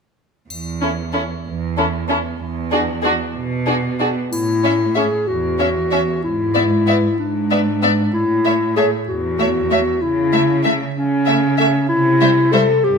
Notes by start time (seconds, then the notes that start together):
0.50 E2, triangle
0.82 C#4 E4 A4
1.13 C#4 E4 A4
1.45 E2
1.77 C#4 E4 A4
2.09 C#4 E4 A4
2.40 E2
2.71 D4 F#4 G#4
3.03 D4 F#4 G#4
3.35 B2
3.66 D4 F#4 G#4
4.00 D4 F#4 G#4
4.32 A2 E4, triangle
4.64 C#4 C#5 E5
4.95 C#4 G#4 C#5 E5
5.28 E2 F#4
5.59 C#4 C#5 E5
5.91 C#4 C#5 E5
6.24 G#2 E4
6.54 B3 D5 E5
6.87 B3 D5 E5
7.19 G#2 D4
7.51 B3 D5 E5
7.82 B3 D5 E5
8.14 A2 E4
8.45 A3 C#5 E5
8.77 A3 G#4 C#5 E5
9.08 E2 F#4
9.39 A3 C#5 E5
9.70 A3 C#5 E5
10.02 C#3 E4
10.33 A3 E5
10.64 A3 E5
10.96 C#3 C#4
11.26 A3 E5
11.58 A3 E5
11.89 C3 E4
12.21 G3 C5 E5
12.52 G3 A4 C5 E5
12.84 G2 G4